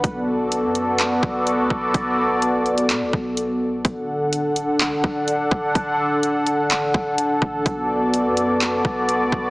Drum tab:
HH |x---x-x-x---x---|x---x-xxx---x---|x---x-x-x---x---|x---x-x-x---x---|
CP |--------x-------|--------x-------|--------x-------|--------x-------|
BD |o---------o---o-|o---------o-----|o---------o---o-|o---------o---o-|

HH |x---x-x-x---x---|
CP |--------x-------|
BD |o---------o---o-|